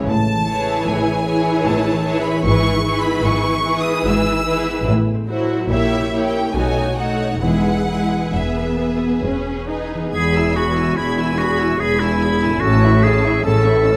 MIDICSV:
0, 0, Header, 1, 8, 480
1, 0, Start_track
1, 0, Key_signature, 4, "major"
1, 0, Tempo, 794702
1, 44, Time_signature, 3, 2, 24, 8
1, 2445, Tempo, 824176
1, 3405, Tempo, 860832
1, 4365, Tempo, 899550
1, 5805, Tempo, 829876
1, 8033, End_track
2, 0, Start_track
2, 0, Title_t, "Violin section"
2, 0, Program_c, 0, 48
2, 55, Note_on_c, 0, 81, 74
2, 498, Note_off_c, 0, 81, 0
2, 516, Note_on_c, 0, 80, 70
2, 996, Note_off_c, 0, 80, 0
2, 1006, Note_on_c, 0, 81, 64
2, 1322, Note_off_c, 0, 81, 0
2, 1328, Note_on_c, 0, 83, 68
2, 1482, Note_off_c, 0, 83, 0
2, 1483, Note_on_c, 0, 85, 86
2, 1796, Note_off_c, 0, 85, 0
2, 1809, Note_on_c, 0, 83, 75
2, 1966, Note_off_c, 0, 83, 0
2, 1968, Note_on_c, 0, 85, 82
2, 2287, Note_off_c, 0, 85, 0
2, 2300, Note_on_c, 0, 87, 75
2, 2453, Note_off_c, 0, 87, 0
2, 2461, Note_on_c, 0, 88, 76
2, 2930, Note_off_c, 0, 88, 0
2, 3411, Note_on_c, 0, 76, 69
2, 3699, Note_off_c, 0, 76, 0
2, 3722, Note_on_c, 0, 79, 61
2, 3873, Note_off_c, 0, 79, 0
2, 3873, Note_on_c, 0, 80, 62
2, 4110, Note_on_c, 0, 78, 58
2, 4114, Note_off_c, 0, 80, 0
2, 4354, Note_off_c, 0, 78, 0
2, 4361, Note_on_c, 0, 78, 67
2, 4842, Note_off_c, 0, 78, 0
2, 4854, Note_on_c, 0, 76, 50
2, 5333, Note_off_c, 0, 76, 0
2, 5810, Note_on_c, 0, 92, 48
2, 5922, Note_off_c, 0, 92, 0
2, 5937, Note_on_c, 0, 88, 42
2, 6056, Note_off_c, 0, 88, 0
2, 6062, Note_on_c, 0, 92, 42
2, 6180, Note_off_c, 0, 92, 0
2, 6183, Note_on_c, 0, 88, 41
2, 6301, Note_off_c, 0, 88, 0
2, 6301, Note_on_c, 0, 92, 44
2, 6412, Note_off_c, 0, 92, 0
2, 6424, Note_on_c, 0, 88, 39
2, 6542, Note_off_c, 0, 88, 0
2, 6544, Note_on_c, 0, 92, 39
2, 6660, Note_on_c, 0, 88, 41
2, 6662, Note_off_c, 0, 92, 0
2, 6779, Note_off_c, 0, 88, 0
2, 6781, Note_on_c, 0, 92, 42
2, 6891, Note_off_c, 0, 92, 0
2, 6906, Note_on_c, 0, 88, 41
2, 7021, Note_off_c, 0, 88, 0
2, 7021, Note_on_c, 0, 92, 42
2, 7138, Note_off_c, 0, 92, 0
2, 7141, Note_on_c, 0, 88, 41
2, 7256, Note_off_c, 0, 88, 0
2, 7263, Note_on_c, 0, 88, 48
2, 7371, Note_off_c, 0, 88, 0
2, 7373, Note_on_c, 0, 85, 43
2, 7493, Note_on_c, 0, 88, 41
2, 7494, Note_off_c, 0, 85, 0
2, 7603, Note_on_c, 0, 85, 42
2, 7613, Note_off_c, 0, 88, 0
2, 7727, Note_off_c, 0, 85, 0
2, 7728, Note_on_c, 0, 88, 43
2, 7839, Note_off_c, 0, 88, 0
2, 7840, Note_on_c, 0, 85, 42
2, 7961, Note_on_c, 0, 88, 40
2, 7962, Note_off_c, 0, 85, 0
2, 8033, Note_off_c, 0, 88, 0
2, 8033, End_track
3, 0, Start_track
3, 0, Title_t, "Violin section"
3, 0, Program_c, 1, 48
3, 280, Note_on_c, 1, 68, 48
3, 280, Note_on_c, 1, 73, 43
3, 746, Note_off_c, 1, 73, 0
3, 747, Note_off_c, 1, 68, 0
3, 765, Note_on_c, 1, 68, 51
3, 766, Note_on_c, 1, 73, 45
3, 1232, Note_off_c, 1, 68, 0
3, 1233, Note_off_c, 1, 73, 0
3, 1240, Note_on_c, 1, 73, 45
3, 1242, Note_on_c, 1, 68, 48
3, 1473, Note_off_c, 1, 73, 0
3, 1474, Note_off_c, 1, 68, 0
3, 1491, Note_on_c, 1, 71, 48
3, 1492, Note_on_c, 1, 68, 47
3, 1720, Note_off_c, 1, 71, 0
3, 1721, Note_off_c, 1, 68, 0
3, 1734, Note_on_c, 1, 71, 50
3, 1736, Note_on_c, 1, 68, 50
3, 2200, Note_off_c, 1, 68, 0
3, 2202, Note_off_c, 1, 71, 0
3, 2208, Note_on_c, 1, 68, 49
3, 2211, Note_on_c, 1, 71, 50
3, 2675, Note_off_c, 1, 68, 0
3, 2677, Note_off_c, 1, 71, 0
3, 2690, Note_on_c, 1, 68, 49
3, 2693, Note_on_c, 1, 71, 50
3, 2921, Note_off_c, 1, 68, 0
3, 2923, Note_off_c, 1, 71, 0
3, 3167, Note_on_c, 1, 72, 47
3, 3170, Note_on_c, 1, 66, 43
3, 3403, Note_off_c, 1, 72, 0
3, 3404, Note_off_c, 1, 66, 0
3, 3409, Note_on_c, 1, 73, 44
3, 3410, Note_on_c, 1, 67, 42
3, 3637, Note_off_c, 1, 67, 0
3, 3637, Note_off_c, 1, 73, 0
3, 3643, Note_on_c, 1, 73, 45
3, 3644, Note_on_c, 1, 67, 43
3, 3872, Note_off_c, 1, 67, 0
3, 3872, Note_off_c, 1, 73, 0
3, 3881, Note_on_c, 1, 73, 41
3, 3883, Note_on_c, 1, 66, 41
3, 4113, Note_off_c, 1, 73, 0
3, 4114, Note_off_c, 1, 66, 0
3, 4123, Note_on_c, 1, 73, 40
3, 4125, Note_on_c, 1, 66, 38
3, 4365, Note_off_c, 1, 73, 0
3, 4366, Note_off_c, 1, 66, 0
3, 4372, Note_on_c, 1, 68, 40
3, 4377, Note_on_c, 1, 71, 40
3, 4609, Note_off_c, 1, 68, 0
3, 4612, Note_off_c, 1, 71, 0
3, 4617, Note_on_c, 1, 68, 37
3, 4621, Note_on_c, 1, 71, 38
3, 5087, Note_off_c, 1, 68, 0
3, 5089, Note_off_c, 1, 71, 0
3, 5105, Note_on_c, 1, 71, 37
3, 5107, Note_on_c, 1, 68, 36
3, 5568, Note_off_c, 1, 71, 0
3, 5569, Note_off_c, 1, 68, 0
3, 5580, Note_on_c, 1, 71, 34
3, 5581, Note_on_c, 1, 68, 35
3, 5805, Note_off_c, 1, 68, 0
3, 5805, Note_off_c, 1, 71, 0
3, 5827, Note_on_c, 1, 83, 47
3, 5931, Note_off_c, 1, 83, 0
3, 5949, Note_on_c, 1, 80, 41
3, 6062, Note_off_c, 1, 80, 0
3, 6063, Note_on_c, 1, 83, 41
3, 6179, Note_on_c, 1, 80, 39
3, 6180, Note_off_c, 1, 83, 0
3, 6299, Note_off_c, 1, 80, 0
3, 6305, Note_on_c, 1, 83, 39
3, 6414, Note_off_c, 1, 83, 0
3, 6436, Note_on_c, 1, 80, 40
3, 6548, Note_off_c, 1, 80, 0
3, 6557, Note_on_c, 1, 83, 40
3, 6666, Note_on_c, 1, 80, 38
3, 6668, Note_off_c, 1, 83, 0
3, 6783, Note_off_c, 1, 80, 0
3, 6799, Note_on_c, 1, 83, 42
3, 6901, Note_off_c, 1, 83, 0
3, 6914, Note_on_c, 1, 80, 38
3, 7024, Note_on_c, 1, 83, 40
3, 7025, Note_off_c, 1, 80, 0
3, 7140, Note_off_c, 1, 83, 0
3, 7148, Note_on_c, 1, 80, 40
3, 7262, Note_off_c, 1, 80, 0
3, 7267, Note_on_c, 1, 81, 47
3, 7373, Note_off_c, 1, 81, 0
3, 7384, Note_on_c, 1, 76, 41
3, 7499, Note_off_c, 1, 76, 0
3, 7501, Note_on_c, 1, 81, 40
3, 7617, Note_off_c, 1, 81, 0
3, 7620, Note_on_c, 1, 76, 40
3, 7729, Note_on_c, 1, 81, 41
3, 7735, Note_off_c, 1, 76, 0
3, 7840, Note_off_c, 1, 81, 0
3, 7852, Note_on_c, 1, 76, 37
3, 7962, Note_on_c, 1, 81, 40
3, 7967, Note_off_c, 1, 76, 0
3, 8033, Note_off_c, 1, 81, 0
3, 8033, End_track
4, 0, Start_track
4, 0, Title_t, "Clarinet"
4, 0, Program_c, 2, 71
4, 5810, Note_on_c, 2, 68, 66
4, 6061, Note_on_c, 2, 66, 62
4, 6069, Note_off_c, 2, 68, 0
4, 6298, Note_on_c, 2, 64, 62
4, 6306, Note_off_c, 2, 66, 0
4, 6539, Note_on_c, 2, 66, 61
4, 6547, Note_off_c, 2, 64, 0
4, 6776, Note_on_c, 2, 68, 64
4, 6785, Note_off_c, 2, 66, 0
4, 6892, Note_on_c, 2, 64, 67
4, 6900, Note_off_c, 2, 68, 0
4, 7245, Note_on_c, 2, 66, 66
4, 7254, Note_off_c, 2, 64, 0
4, 7490, Note_on_c, 2, 68, 62
4, 7499, Note_off_c, 2, 66, 0
4, 7728, Note_off_c, 2, 68, 0
4, 7731, Note_on_c, 2, 69, 66
4, 8033, Note_off_c, 2, 69, 0
4, 8033, End_track
5, 0, Start_track
5, 0, Title_t, "Viola section"
5, 0, Program_c, 3, 48
5, 285, Note_on_c, 3, 64, 44
5, 286, Note_on_c, 3, 52, 45
5, 749, Note_off_c, 3, 64, 0
5, 750, Note_off_c, 3, 52, 0
5, 758, Note_on_c, 3, 52, 47
5, 760, Note_on_c, 3, 64, 48
5, 1229, Note_off_c, 3, 52, 0
5, 1230, Note_off_c, 3, 64, 0
5, 1237, Note_on_c, 3, 52, 46
5, 1239, Note_on_c, 3, 64, 46
5, 1465, Note_off_c, 3, 52, 0
5, 1469, Note_off_c, 3, 64, 0
5, 1472, Note_on_c, 3, 52, 48
5, 1476, Note_on_c, 3, 64, 47
5, 1711, Note_off_c, 3, 52, 0
5, 1713, Note_off_c, 3, 64, 0
5, 1721, Note_on_c, 3, 52, 50
5, 1721, Note_on_c, 3, 64, 49
5, 2191, Note_off_c, 3, 52, 0
5, 2192, Note_off_c, 3, 64, 0
5, 2198, Note_on_c, 3, 52, 50
5, 2199, Note_on_c, 3, 64, 47
5, 2669, Note_off_c, 3, 64, 0
5, 2670, Note_off_c, 3, 52, 0
5, 2676, Note_on_c, 3, 64, 48
5, 2679, Note_on_c, 3, 52, 48
5, 2914, Note_off_c, 3, 64, 0
5, 2915, Note_off_c, 3, 52, 0
5, 3156, Note_on_c, 3, 54, 44
5, 3157, Note_on_c, 3, 64, 44
5, 3387, Note_off_c, 3, 64, 0
5, 3394, Note_on_c, 3, 64, 45
5, 3395, Note_on_c, 3, 58, 47
5, 3398, Note_off_c, 3, 54, 0
5, 3629, Note_off_c, 3, 58, 0
5, 3629, Note_off_c, 3, 64, 0
5, 3635, Note_on_c, 3, 58, 41
5, 3635, Note_on_c, 3, 64, 44
5, 3867, Note_off_c, 3, 58, 0
5, 3868, Note_off_c, 3, 64, 0
5, 3872, Note_on_c, 3, 63, 43
5, 3874, Note_on_c, 3, 57, 45
5, 4106, Note_off_c, 3, 63, 0
5, 4107, Note_off_c, 3, 57, 0
5, 4113, Note_on_c, 3, 63, 35
5, 4114, Note_on_c, 3, 57, 37
5, 4359, Note_off_c, 3, 63, 0
5, 4360, Note_off_c, 3, 57, 0
5, 4361, Note_on_c, 3, 56, 41
5, 4361, Note_on_c, 3, 64, 38
5, 4604, Note_off_c, 3, 56, 0
5, 4604, Note_off_c, 3, 64, 0
5, 4613, Note_on_c, 3, 64, 35
5, 4614, Note_on_c, 3, 56, 38
5, 4803, Note_off_c, 3, 56, 0
5, 4803, Note_off_c, 3, 64, 0
5, 4854, Note_on_c, 3, 59, 49
5, 5311, Note_off_c, 3, 59, 0
5, 5333, Note_on_c, 3, 61, 49
5, 5571, Note_on_c, 3, 63, 41
5, 5572, Note_off_c, 3, 61, 0
5, 5804, Note_on_c, 3, 68, 45
5, 5805, Note_off_c, 3, 63, 0
5, 5919, Note_off_c, 3, 68, 0
5, 5931, Note_on_c, 3, 64, 40
5, 6051, Note_on_c, 3, 68, 41
5, 6053, Note_off_c, 3, 64, 0
5, 6172, Note_on_c, 3, 64, 41
5, 6174, Note_off_c, 3, 68, 0
5, 6294, Note_on_c, 3, 68, 44
5, 6295, Note_off_c, 3, 64, 0
5, 6408, Note_off_c, 3, 68, 0
5, 6414, Note_on_c, 3, 64, 40
5, 6535, Note_on_c, 3, 68, 42
5, 6537, Note_off_c, 3, 64, 0
5, 6655, Note_on_c, 3, 64, 38
5, 6657, Note_off_c, 3, 68, 0
5, 6771, Note_on_c, 3, 68, 42
5, 6777, Note_off_c, 3, 64, 0
5, 6886, Note_off_c, 3, 68, 0
5, 6894, Note_on_c, 3, 64, 42
5, 7015, Note_off_c, 3, 64, 0
5, 7024, Note_on_c, 3, 68, 42
5, 7137, Note_on_c, 3, 64, 41
5, 7140, Note_off_c, 3, 68, 0
5, 7255, Note_on_c, 3, 61, 48
5, 7256, Note_off_c, 3, 64, 0
5, 7366, Note_off_c, 3, 61, 0
5, 7376, Note_on_c, 3, 64, 41
5, 7495, Note_off_c, 3, 64, 0
5, 7498, Note_on_c, 3, 61, 41
5, 7616, Note_off_c, 3, 61, 0
5, 7620, Note_on_c, 3, 64, 42
5, 7730, Note_on_c, 3, 61, 46
5, 7735, Note_off_c, 3, 64, 0
5, 7840, Note_off_c, 3, 61, 0
5, 7848, Note_on_c, 3, 64, 41
5, 7965, Note_on_c, 3, 61, 41
5, 7966, Note_off_c, 3, 64, 0
5, 8033, Note_off_c, 3, 61, 0
5, 8033, End_track
6, 0, Start_track
6, 0, Title_t, "Harp"
6, 0, Program_c, 4, 46
6, 0, Note_on_c, 4, 49, 44
6, 0, Note_on_c, 4, 56, 37
6, 0, Note_on_c, 4, 61, 38
6, 0, Note_on_c, 4, 64, 44
6, 47, Note_on_c, 4, 45, 51
6, 69, Note_off_c, 4, 49, 0
6, 209, Note_on_c, 4, 52, 39
6, 359, Note_off_c, 4, 61, 0
6, 366, Note_on_c, 4, 61, 36
6, 517, Note_off_c, 4, 52, 0
6, 524, Note_on_c, 4, 52, 43
6, 679, Note_off_c, 4, 64, 0
6, 686, Note_on_c, 4, 64, 38
6, 847, Note_on_c, 4, 63, 37
6, 998, Note_off_c, 4, 64, 0
6, 1006, Note_on_c, 4, 64, 48
6, 1115, Note_off_c, 4, 63, 0
6, 1159, Note_off_c, 4, 52, 0
6, 1167, Note_on_c, 4, 52, 40
6, 1320, Note_off_c, 4, 61, 0
6, 1327, Note_on_c, 4, 61, 43
6, 1487, Note_on_c, 4, 44, 55
6, 1497, Note_off_c, 4, 45, 0
6, 1500, Note_off_c, 4, 52, 0
6, 1501, Note_off_c, 4, 61, 0
6, 1642, Note_off_c, 4, 56, 0
6, 1649, Note_on_c, 4, 56, 41
6, 1808, Note_on_c, 4, 59, 44
6, 1960, Note_off_c, 4, 56, 0
6, 1968, Note_on_c, 4, 56, 46
6, 2123, Note_off_c, 4, 64, 0
6, 2131, Note_on_c, 4, 64, 43
6, 2290, Note_on_c, 4, 63, 40
6, 2443, Note_off_c, 4, 64, 0
6, 2450, Note_on_c, 4, 64, 50
6, 2558, Note_off_c, 4, 63, 0
6, 2596, Note_off_c, 4, 56, 0
6, 2603, Note_on_c, 4, 56, 43
6, 2753, Note_off_c, 4, 59, 0
6, 2760, Note_on_c, 4, 59, 42
6, 2923, Note_on_c, 4, 45, 55
6, 2940, Note_off_c, 4, 59, 0
6, 2941, Note_off_c, 4, 56, 0
6, 2947, Note_off_c, 4, 44, 0
6, 3084, Note_on_c, 4, 60, 44
6, 3241, Note_off_c, 4, 64, 0
6, 3246, Note_on_c, 4, 64, 38
6, 3251, Note_on_c, 4, 66, 39
6, 3404, Note_on_c, 4, 46, 53
6, 3425, Note_off_c, 4, 45, 0
6, 3425, Note_off_c, 4, 60, 0
6, 3427, Note_off_c, 4, 66, 0
6, 3563, Note_on_c, 4, 61, 37
6, 3716, Note_off_c, 4, 64, 0
6, 3722, Note_on_c, 4, 64, 35
6, 3725, Note_on_c, 4, 67, 38
6, 3878, Note_on_c, 4, 47, 52
6, 3893, Note_off_c, 4, 46, 0
6, 3896, Note_off_c, 4, 64, 0
6, 3897, Note_off_c, 4, 67, 0
6, 4031, Note_off_c, 4, 61, 0
6, 4038, Note_on_c, 4, 61, 37
6, 4201, Note_on_c, 4, 63, 31
6, 4204, Note_on_c, 4, 69, 35
6, 4367, Note_on_c, 4, 52, 42
6, 4387, Note_off_c, 4, 47, 0
6, 4387, Note_off_c, 4, 61, 0
6, 4388, Note_off_c, 4, 63, 0
6, 4388, Note_off_c, 4, 69, 0
6, 4534, Note_on_c, 4, 59, 32
6, 4696, Note_on_c, 4, 64, 32
6, 4853, Note_off_c, 4, 59, 0
6, 4860, Note_on_c, 4, 59, 35
6, 5020, Note_on_c, 4, 68, 31
6, 5179, Note_on_c, 4, 66, 28
6, 5328, Note_off_c, 4, 68, 0
6, 5334, Note_on_c, 4, 68, 34
6, 5447, Note_off_c, 4, 66, 0
6, 5489, Note_off_c, 4, 59, 0
6, 5496, Note_on_c, 4, 59, 31
6, 5653, Note_off_c, 4, 64, 0
6, 5659, Note_on_c, 4, 64, 32
6, 5706, Note_off_c, 4, 52, 0
6, 5712, Note_on_c, 4, 52, 42
6, 5730, Note_off_c, 4, 59, 0
6, 5737, Note_on_c, 4, 59, 37
6, 5752, Note_off_c, 4, 64, 0
6, 5758, Note_on_c, 4, 64, 35
6, 5782, Note_on_c, 4, 71, 36
6, 7155, Note_on_c, 4, 45, 44
6, 7181, Note_on_c, 4, 61, 36
6, 7202, Note_off_c, 4, 64, 0
6, 7209, Note_on_c, 4, 64, 35
6, 7224, Note_off_c, 4, 52, 0
6, 7234, Note_on_c, 4, 69, 37
6, 7238, Note_off_c, 4, 59, 0
6, 7262, Note_off_c, 4, 71, 0
6, 7276, Note_off_c, 4, 68, 0
6, 8033, Note_off_c, 4, 45, 0
6, 8033, Note_off_c, 4, 61, 0
6, 8033, Note_off_c, 4, 64, 0
6, 8033, Note_off_c, 4, 69, 0
6, 8033, End_track
7, 0, Start_track
7, 0, Title_t, "Cello section"
7, 0, Program_c, 5, 48
7, 51, Note_on_c, 5, 45, 59
7, 449, Note_off_c, 5, 45, 0
7, 529, Note_on_c, 5, 45, 59
7, 930, Note_off_c, 5, 45, 0
7, 1003, Note_on_c, 5, 45, 62
7, 1408, Note_off_c, 5, 45, 0
7, 1484, Note_on_c, 5, 44, 61
7, 1892, Note_off_c, 5, 44, 0
7, 1965, Note_on_c, 5, 44, 66
7, 2375, Note_off_c, 5, 44, 0
7, 2449, Note_on_c, 5, 44, 68
7, 2852, Note_off_c, 5, 44, 0
7, 2926, Note_on_c, 5, 45, 67
7, 3336, Note_off_c, 5, 45, 0
7, 3408, Note_on_c, 5, 46, 58
7, 3806, Note_off_c, 5, 46, 0
7, 3876, Note_on_c, 5, 47, 53
7, 4293, Note_off_c, 5, 47, 0
7, 4366, Note_on_c, 5, 40, 50
7, 4785, Note_off_c, 5, 40, 0
7, 4857, Note_on_c, 5, 40, 47
7, 5265, Note_off_c, 5, 40, 0
7, 5336, Note_on_c, 5, 40, 45
7, 5741, Note_off_c, 5, 40, 0
7, 5810, Note_on_c, 5, 40, 54
7, 6241, Note_off_c, 5, 40, 0
7, 6298, Note_on_c, 5, 40, 53
7, 6723, Note_off_c, 5, 40, 0
7, 6780, Note_on_c, 5, 40, 50
7, 7200, Note_off_c, 5, 40, 0
7, 7257, Note_on_c, 5, 45, 59
7, 7677, Note_off_c, 5, 45, 0
7, 7736, Note_on_c, 5, 45, 51
7, 8033, Note_off_c, 5, 45, 0
7, 8033, End_track
8, 0, Start_track
8, 0, Title_t, "Double bass section"
8, 0, Program_c, 6, 48
8, 45, Note_on_c, 6, 33, 59
8, 446, Note_off_c, 6, 33, 0
8, 525, Note_on_c, 6, 33, 56
8, 928, Note_off_c, 6, 33, 0
8, 998, Note_on_c, 6, 33, 57
8, 1405, Note_off_c, 6, 33, 0
8, 1478, Note_on_c, 6, 32, 64
8, 1889, Note_off_c, 6, 32, 0
8, 1959, Note_on_c, 6, 32, 63
8, 2372, Note_off_c, 6, 32, 0
8, 2444, Note_on_c, 6, 32, 58
8, 2850, Note_off_c, 6, 32, 0
8, 2915, Note_on_c, 6, 33, 62
8, 3330, Note_off_c, 6, 33, 0
8, 3401, Note_on_c, 6, 34, 55
8, 3803, Note_off_c, 6, 34, 0
8, 3871, Note_on_c, 6, 35, 51
8, 4290, Note_off_c, 6, 35, 0
8, 4364, Note_on_c, 6, 28, 52
8, 4783, Note_off_c, 6, 28, 0
8, 4852, Note_on_c, 6, 28, 47
8, 5263, Note_off_c, 6, 28, 0
8, 5329, Note_on_c, 6, 28, 44
8, 5737, Note_off_c, 6, 28, 0
8, 5806, Note_on_c, 6, 28, 52
8, 6239, Note_off_c, 6, 28, 0
8, 6295, Note_on_c, 6, 28, 49
8, 6722, Note_off_c, 6, 28, 0
8, 6777, Note_on_c, 6, 28, 53
8, 7199, Note_off_c, 6, 28, 0
8, 7256, Note_on_c, 6, 33, 54
8, 7677, Note_off_c, 6, 33, 0
8, 7735, Note_on_c, 6, 33, 54
8, 8033, Note_off_c, 6, 33, 0
8, 8033, End_track
0, 0, End_of_file